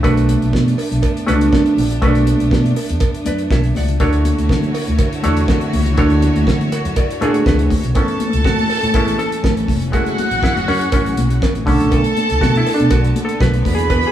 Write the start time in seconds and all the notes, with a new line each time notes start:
Already playing: A3
0.03 B1 A3 B3 D4 F#4 B4, kick, closed hi-hat, cowbell
0.17 closed hi-hat
0.29 closed hi-hat, muted conga, high conga
0.42 B1, closed hi-hat
0.53 B2, kick, snare, cowbell, muted conga
0.66 closed hi-hat, high conga
0.78 open hi-hat, cowbell
0.92 B1, closed hi-hat
1.03 kick, closed hi-hat, cowbell
1.17 closed hi-hat
1.27 C#2 A3 C#4 F#4 B4, closed hi-hat, muted conga, high conga
1.33 D4
1.41 closed hi-hat
1.53 kick, snare, cowbell, high conga
1.66 closed hi-hat
1.77 A#1, open hi-hat, high conga, low conga
1.91 closed hi-hat, low conga
2.02 B1 A3 C#4 F#4 B4, kick, closed hi-hat, cowbell
2.08 D4
2.15 closed hi-hat
2.27 closed hi-hat, muted conga, high conga
2.40 B1, closed hi-hat
2.51 B2, kick, snare, cowbell
2.64 closed hi-hat, high conga
2.76 open hi-hat, cowbell, muted conga
2.89 E2, closed hi-hat
3.00 kick, closed hi-hat, cowbell, muted conga
3.15 closed hi-hat
3.25 F#2 B4 D5, closed hi-hat, muted conga, high conga
3.39 closed hi-hat
3.51 B1 C#5 E5, kick, snare, cowbell, high conga
3.64 closed hi-hat
3.75 C#2 D5 F#5, snare, open hi-hat, muted conga, high conga, low conga
3.88 closed hi-hat, low conga
4.00 D2 D3 A3 D4 E4 F#4 C#5, kick, closed hi-hat, cowbell
4.13 closed hi-hat
4.25 closed hi-hat, high conga
4.38 D2, closed hi-hat
4.49 D3, kick, snare, cowbell
4.62 closed hi-hat, high conga
4.74 open hi-hat, cowbell
4.87 D2, closed hi-hat
4.99 kick, closed hi-hat, cowbell
5.13 closed hi-hat
5.23 E2 A3 D4 F#4 C#5, closed hi-hat, high conga
5.37 closed hi-hat
5.48 kick, snare, cowbell, high conga
5.61 closed hi-hat
5.73 C#2, open hi-hat, muted conga, high conga, low conga
5.86 closed hi-hat, low conga
5.97 D2 A3 D4 F#4 C#5, kick, closed hi-hat, cowbell
6.10 closed hi-hat
6.22 closed hi-hat, muted conga, high conga
6.36 D2, closed hi-hat
6.47 D3, kick, snare, cowbell
6.61 closed hi-hat, high conga, low conga
6.72 F#5, closed hi-hat, cowbell, muted conga
6.85 F#2, closed hi-hat
6.96 D5, kick, closed hi-hat, cowbell, muted conga
7.11 closed hi-hat
7.21 A2 A3 D4 F4 G#4 C#5, closed hi-hat, cowbell, muted conga, high conga
7.28 F#4
7.34 closed hi-hat
7.46 C#2 B4, kick, snare, cowbell, muted conga, high conga
7.59 D2, closed hi-hat
7.70 kick, snare, open hi-hat, muted conga, high conga, low conga
7.83 B1, closed hi-hat, low conga
7.95 A1 E3 A3 B3 C#4 A4 A5, kick, closed hi-hat, cowbell
8.08 closed hi-hat
8.20 closed hi-hat, muted conga, high conga
8.33 C#2, closed hi-hat
8.44 A2 F#4, kick, snare, cowbell, muted conga
8.58 closed hi-hat, high conga
8.70 open hi-hat, cowbell, muted conga
8.83 A2, closed hi-hat
8.94 A1 G#3 B3 C#4 E4, kick, closed hi-hat, cowbell, muted conga
9.08 closed hi-hat
9.18 A4, closed hi-hat, muted conga, high conga
9.32 closed hi-hat
9.44 A1, kick, snare, cowbell, muted conga
9.57 closed hi-hat
9.68 F1, kick, snare, open hi-hat, high conga, low conga
9.82 closed hi-hat, low conga
9.92 F#1 F#3 G#3 A3 E4 F#4 G#4 F#5, kick, closed hi-hat, cowbell, muted conga
10.06 closed hi-hat
10.18 closed hi-hat, high conga
10.31 A1, closed hi-hat
10.43 E4, kick, snare, cowbell
10.56 F#1, closed hi-hat, high conga
10.68 F#2 C#4, open hi-hat, cowbell
10.81 closed hi-hat
10.92 A1 C#4, kick, closed hi-hat, cowbell, muted conga
11.06 closed hi-hat
11.17 B1, closed hi-hat, muted conga, high conga
11.30 closed hi-hat
11.42 kick, snare, cowbell, muted conga
11.55 A1, closed hi-hat
11.66 B1 D3 A3 B3 C#4 A4 A5, kick, snare, open hi-hat, high conga, low conga
11.80 A#1, closed hi-hat, low conga
11.91 B1, kick, closed hi-hat, cowbell
12.04 closed hi-hat
12.17 closed hi-hat, muted conga, high conga
12.30 C#2, closed hi-hat
12.41 B2 F#4, kick, snare, cowbell
12.55 E4, closed hi-hat, high conga
12.67 open hi-hat, cowbell
12.74 D4
12.80 B2, closed hi-hat
12.90 B1 F#4, kick, closed hi-hat, cowbell, muted conga
13.04 closed hi-hat
13.16 closed hi-hat, muted conga, high conga
13.25 A4, closed hi-hat
13.40 B1 B4, kick, snare, cowbell, muted conga
13.54 closed hi-hat
13.65 E2 E3 F#4 G#4 B4 B5, kick, snare, open hi-hat, high conga, low conga
13.75 G#4, closed hi-hat, low conga
13.90 E2 B4, kick, closed hi-hat, cowbell
14.03 closed hi-hat
14.07 G#4